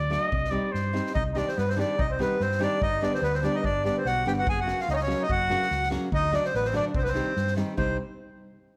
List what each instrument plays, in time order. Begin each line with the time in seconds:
Already playing: fingered electric bass D2, trumpet D5
0.10 nylon-string guitar F#3 A3 D4 F#4, trumpet D#5, snare
0.32 fingered electric bass C2, kick
0.44 snare
0.51 nylon-string guitar G3 C4 D#4 G4, trumpet D5
0.72 fingered electric bass G2, trumpet C5, snare
0.93 nylon-string guitar G3 C4 D#4 G4, snare
1.06 snare
1.14 fingered electric bass C2, trumpet D#4, accordion D#5, kick
1.33 nylon-string guitar D#3 G3 C4 D#4 G4, trumpet D4 D#4, accordion D#5, snare
1.37 accordion D5
1.48 trumpet C4, accordion C5, snare
1.56 fingered electric bass G2, trumpet B3, accordion B4, snare
1.67 trumpet C4, accordion C5, snare
1.76 nylon-string guitar D#3 G3 C4 D#4 G4, trumpet D4, accordion D5, snare
1.97 fingered electric bass C2, trumpet D#4, accordion D#5, kick
2.09 trumpet C4, accordion C5
2.19 nylon-string guitar D#3 G3 C4 D#4 G4, trumpet B3, accordion B4, snare
2.40 fingered electric bass G2, trumpet C4, accordion C5, snare
2.52 snare
2.59 nylon-string guitar D#3 G3 C4 D#4 G4, trumpet D4, snare
2.63 accordion D5
2.81 fingered electric bass G1, trumpet D#4, accordion D#5, kick
3.01 nylon-string guitar D3 G3 B3 D4 G4, trumpet D4, accordion D5, snare
3.14 trumpet C4, accordion C5, snare
3.22 fingered electric bass D2, trumpet B3, accordion B4, snare
3.34 trumpet C4, accordion C5, snare
3.42 nylon-string guitar D3 G3 B3 D4 G4, trumpet D4, accordion D5, snare
3.54 trumpet D#4, accordion D#5
3.64 fingered electric bass G1, trumpet D4, accordion D5, kick
3.84 nylon-string guitar D3 G3 B3 D4 G4, trumpet D4, accordion D5, snare
3.98 trumpet C4, accordion C5
4.05 fingered electric bass B1, trumpet F#4, accordion F#5, snare
4.25 fingered electric bass G1, nylon-string guitar D3 G3 B3 D4 G4, trumpet G4, accordion G5, snare
4.39 trumpet F#4, accordion F#5
4.47 fingered electric bass F#1, trumpet G#4, accordion G#5, kick
4.61 trumpet F#4, accordion F#5
4.65 nylon-string guitar C#3 F#3 A#3 C#4 F#4, snare
4.80 trumpet F4, accordion F5, snare
4.88 fingered electric bass C#2, trumpet D#4, accordion D#5, snare
4.93 trumpet C#4 D#4, accordion C#5 D#5
5.00 trumpet C#4, accordion C#5, snare
5.07 nylon-string guitar C#3 F#3 A#3 C#4 F#4, snare
5.21 trumpet D#4, accordion D#5
5.29 fingered electric bass F#1, trumpet F#4, accordion F#5, kick
5.49 nylon-string guitar C#3 F#3 A#3 C#4 F#4, snare
5.62 snare
5.71 fingered electric bass C#2, snare
5.83 snare
5.90 nylon-string guitar C#3 F#3 A#3 C#4 F#4, snare
6.12 fingered electric bass D2, trumpet D#4, accordion D#5, kick
6.31 nylon-string guitar D3 F#3 A3 D4 F#4, trumpet D4, accordion D5, snare
6.45 trumpet C4, accordion C5, snare
6.54 fingered electric bass A1, trumpet B3, accordion B4, snare
6.65 trumpet C4, accordion C5, snare
6.72 nylon-string guitar D3 F#3 A3 D4 F#4, trumpet D4, accordion D5, snare
6.95 fingered electric bass C2, trumpet C4, accordion C5, kick
7.02 trumpet B3, accordion B4
7.06 trumpet C4, accordion C5, snare
7.14 nylon-string guitar D#3 G3 C4 D#4 G4, snare
7.36 fingered electric bass G2, snare
7.47 snare
7.56 nylon-string guitar D#3 G3 C4 D#4 G4, snare
7.77 fingered electric bass C2, nylon-string guitar G3 C4 D#4 G4, accordion C5, trumpet C5, kick